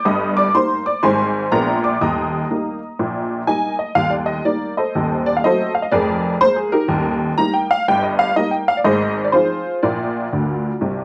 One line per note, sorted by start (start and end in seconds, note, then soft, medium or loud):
0.05 0.47 G1 medium
0.05 0.47 G2 medium
0.05 0.36 D#5 medium
0.05 0.32 D#6 medium
0.37 0.54 D5 medium
0.37 0.52 D6 loud
0.55 0.81 G3 soft
0.55 0.82 A#3 soft
0.55 0.82 D#4 medium
0.55 0.84 C5 medium
0.55 0.81 C6 loud
0.86 1.03 D5 medium
0.86 1.01 D6 medium
1.03 1.45 G#1 medium
1.03 1.45 G#2 medium
1.03 1.30 G3 soft
1.03 1.30 C4 soft
1.03 1.31 D#4 soft
1.03 1.49 C5 medium
1.03 1.49 G#5 medium
1.03 1.45 C6 medium
1.52 1.94 A#1 medium
1.52 1.94 A#2 medium
1.52 1.79 G#3 soft
1.52 1.79 B3 soft
1.52 1.80 D4 soft
1.52 1.82 A#4 medium
1.52 1.79 A#5 medium
1.84 2.01 D5 medium
1.84 1.99 D6 medium
2.01 2.43 D#1 medium
2.01 2.43 D#2 medium
2.01 3.47 D#5 medium
2.01 3.76 A#5 medium
2.01 3.53 D#6 medium
2.51 2.77 G3 soft
2.51 2.78 A#3 soft
2.51 2.78 D#4 soft
2.99 3.41 A#1 medium
2.99 3.41 A#2 medium
3.47 3.74 G3 soft
3.47 3.75 A#3 soft
3.47 3.75 D#4 soft
3.47 3.77 D#5 medium
3.47 3.74 G#5 medium
3.79 3.94 D#5 medium
3.95 4.38 D#1 medium
3.95 4.38 D#2 medium
3.95 4.12 F5 loud
4.10 4.27 D5 medium
4.26 4.42 D#5 medium
4.45 4.72 G3 soft
4.45 4.73 A#3 soft
4.45 4.73 D#4 soft
4.45 4.72 D5 medium
4.77 5.23 A4 medium
4.77 5.23 C5 medium
4.77 5.19 D#5 medium
4.95 5.37 D#1 medium
4.95 5.37 D#2 medium
5.26 5.35 D5 medium
5.37 5.44 F5 medium
5.44 5.72 F#3 soft
5.44 5.71 A3 soft
5.44 5.72 C4 medium
5.44 5.74 A4 medium
5.44 5.74 C5 medium
5.44 5.71 D#5 loud
5.75 5.84 F5 medium
5.83 5.92 D#5 medium
5.92 6.34 F1 medium
5.92 6.34 F2 medium
5.92 6.38 G#4 medium
5.92 6.38 A#4 medium
5.92 6.34 D5 medium
6.41 6.68 G#3 medium
6.41 6.69 A#3 medium
6.41 6.57 C5 loud
6.56 6.72 G#4 medium
6.72 7.19 D#4 medium
6.72 7.18 G4 medium
6.72 7.14 A#4 medium
6.88 7.31 D#1 medium
6.88 7.31 D#2 medium
7.37 7.65 G3 medium
7.37 7.65 A#3 soft
7.37 7.66 D#4 medium
7.37 7.54 A#5 loud
7.53 7.70 G5 medium
7.71 7.85 F5 loud
7.88 8.30 G1 medium
7.88 8.30 G2 medium
7.88 8.04 G5 loud
8.03 8.19 D#5 medium
8.19 8.34 F5 loud
8.36 8.63 G3 soft
8.36 8.64 A#3 soft
8.36 8.65 D#4 soft
8.36 8.52 D#5 loud
8.51 8.68 G5 medium
8.68 8.77 F5 loud
8.77 8.86 D5 medium
8.85 9.27 G#1 medium
8.85 9.27 G#2 medium
8.85 9.23 G#4 medium
8.85 9.23 C5 medium
8.85 9.19 D#5 loud
9.25 9.34 D5 medium
9.32 9.60 F3 soft
9.32 9.61 C4 soft
9.32 9.61 D#4 medium
9.32 9.80 F4 medium
9.32 9.80 G#4 medium
9.32 9.75 C5 medium
9.83 10.25 A#1 medium
9.83 10.25 A#2 medium
9.83 11.04 F4 medium
9.83 11.04 A#4 medium
9.83 11.04 D5 medium
10.32 10.69 D2 medium
10.32 10.69 D3 medium
10.81 11.04 C2 medium
10.81 11.04 C3 medium